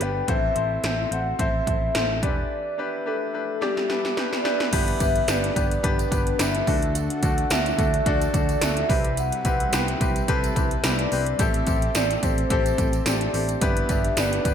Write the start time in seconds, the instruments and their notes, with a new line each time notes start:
Already playing: grand piano G2
0.00 fingered electric bass G1, grand piano B3 D4 G4 B4, soft synth lead G5, closed hi-hat
0.28 fingered electric bass A1, grand piano A2 C4 E4 A4 C5, soft synth lead E5, kick, closed hi-hat
0.55 fingered electric bass A1, grand piano C4 E4 A4 C5, closed hi-hat
0.83 fingered electric bass A1, grand piano C4 E4 A4 C5, snare, closed hi-hat
1.11 fingered electric bass A1, grand piano C4 E4 A4 C5, soft synth lead F#5, closed hi-hat
1.39 fingered electric bass A1, grand piano C4 E4 A4 C5, soft synth lead E5, kick, closed hi-hat
1.67 fingered electric bass A1, grand piano C4 E4 A4 C5, kick, closed hi-hat
1.94 fingered electric bass A1, grand piano C4 E4 A4 C5, snare, closed hi-hat
2.22 fingered electric bass E1, grand piano E3 D4 E4 G4 B4, soft synth lead D5, kick, closed hi-hat
2.78 grand piano D4 E4 G4 B4, soft synth lead B4
3.06 grand piano D4 E4 G4 B4, soft synth lead A4
3.33 grand piano D4 E4 G4 B4
3.61 grand piano D4 E4 G4 D5, soft synth lead G4, snare
3.77 snare
3.89 grand piano D4 E4 G4 B4, snare
4.05 snare
4.16 grand piano D4 E4 G4 B4, soft synth lead D5, snare
4.33 snare
4.44 grand piano D4 E4 G4 B4, snare
4.60 snare
4.72 fingered electric bass G1, grand piano G2 B3 D4 G4 B4, analog synth pad B3 D4 G4, soft synth lead E5, kick, closed hi-hat, crash, tambourine
4.88 closed hi-hat
4.99 fingered electric bass G1, grand piano B3 D4 G4 B4, kick, closed hi-hat, tambourine
5.16 closed hi-hat
5.28 fingered electric bass G1, grand piano B3 D4 G4 B4, soft synth lead D5, snare, closed hi-hat, tambourine
5.44 closed hi-hat
5.55 fingered electric bass G1, grand piano B3 D4 G4 B4, kick, closed hi-hat, tambourine
5.71 closed hi-hat, tambourine
5.83 fingered electric bass G1, grand piano B3 D4 G4 B4, soft synth lead B4, kick, closed hi-hat
5.99 closed hi-hat, tambourine
6.11 fingered electric bass G1, grand piano B3 D4 G4 B4, soft synth lead B4, kick, closed hi-hat, tambourine
6.27 closed hi-hat
6.38 fingered electric bass G1, grand piano B3 D4 G4 B4, soft synth lead E5, snare, closed hi-hat, tambourine
6.55 closed hi-hat
6.67 fingered electric bass D2, grand piano D3 A3 D4 F#4 A4, analog synth pad D3 F#4 A4, kick, open hi-hat, tambourine
6.82 closed hi-hat
6.95 soft synth lead F#5, closed hi-hat, tambourine
7.10 closed hi-hat
7.22 fingered electric bass D2, grand piano A3 D4 F#4 A4, kick, closed hi-hat, tambourine
7.38 closed hi-hat
7.50 fingered electric bass D2, grand piano A3 D4 F#4 A4, soft synth lead E5, snare, closed hi-hat, tambourine
7.66 closed hi-hat, tambourine
7.78 fingered electric bass D2, grand piano A3 D4 F#4 A4, kick, closed hi-hat, tambourine
7.94 closed hi-hat
8.06 fingered electric bass D2, grand piano A3 D4 F#4 A4, soft synth lead D5, kick, closed hi-hat
8.22 closed hi-hat, tambourine
8.33 fingered electric bass D2, grand piano A3 D4 F#4 A4, soft synth lead D5, kick, closed hi-hat, tambourine
8.49 closed hi-hat, tambourine
8.61 fingered electric bass D2, grand piano A3 D4 F#4 A4, soft synth lead E5, snare, closed hi-hat, tambourine
8.77 closed hi-hat
8.89 fingered electric bass C2, grand piano C3 C4 E4 G4 B4, analog synth pad C3 G3 E4 B4, kick, open hi-hat, tambourine
9.05 closed hi-hat
9.17 soft synth lead F#5, closed hi-hat, tambourine
9.32 closed hi-hat
9.45 fingered electric bass C2, grand piano C4 E4 G4 B4, kick, closed hi-hat, tambourine
9.60 closed hi-hat
9.72 fingered electric bass C2, grand piano C4 E4 G4 B4, soft synth lead G5, snare, closed hi-hat, tambourine
9.88 closed hi-hat
10.00 fingered electric bass C2, grand piano C4 E4 G4 B4, kick, closed hi-hat, tambourine
10.16 closed hi-hat, tambourine
10.28 fingered electric bass C2, grand piano C4 E4 G4 B4, soft synth lead A5, kick, closed hi-hat
10.43 closed hi-hat, tambourine
10.56 fingered electric bass C2, grand piano C4 E4 G4 B4, kick, closed hi-hat, tambourine
10.71 closed hi-hat
10.83 fingered electric bass C2, grand piano C4 E4 G4 B4, soft synth lead D5, snare, closed hi-hat, tambourine
10.99 closed hi-hat
11.11 fingered electric bass C2, grand piano C4 E4 G4 B4, open hi-hat, tambourine
11.26 closed hi-hat
11.39 fingered electric bass A1, grand piano A2 C4 E4 G4 A4, analog synth pad A3 C4 G4, soft synth lead E5, kick, closed hi-hat, tambourine
11.54 closed hi-hat
11.67 fingered electric bass A1, grand piano C4 E4 G4 A4, kick, closed hi-hat, tambourine
11.82 closed hi-hat
11.95 fingered electric bass A1, grand piano C4 E4 G4 A4, soft synth lead D5, snare, closed hi-hat, tambourine
12.10 closed hi-hat, tambourine
12.23 fingered electric bass A1, grand piano C4 E4 G4 A4, soft synth lead C5, kick, closed hi-hat, tambourine
12.38 closed hi-hat
12.50 fingered electric bass A1, grand piano C4 E4 G4 A4, kick, closed hi-hat
12.66 closed hi-hat, tambourine
12.78 fingered electric bass A1, grand piano C4 E4 G4 A4, kick, closed hi-hat, tambourine
12.93 closed hi-hat, tambourine
13.06 fingered electric bass A1, grand piano C4 E4 G4 A4, soft synth lead D5, snare, closed hi-hat, tambourine
13.21 closed hi-hat
13.34 fingered electric bass A1, grand piano C4 E4 G4 A4, open hi-hat, tambourine
13.49 closed hi-hat, tambourine
13.61 fingered electric bass G1, grand piano G2 B3 D4 G4 B4, analog synth pad B3 D4 G4, soft synth lead E5, kick, closed hi-hat, tambourine
13.77 closed hi-hat
13.89 fingered electric bass G1, grand piano B3 D4 G4 B4, kick, closed hi-hat, tambourine
14.04 closed hi-hat
14.16 fingered electric bass G1, grand piano B3 D4 G4 B4, soft synth lead D5, snare, closed hi-hat, tambourine
14.33 closed hi-hat
14.44 fingered electric bass G1, grand piano B3 D4 G4 B4, kick, closed hi-hat, tambourine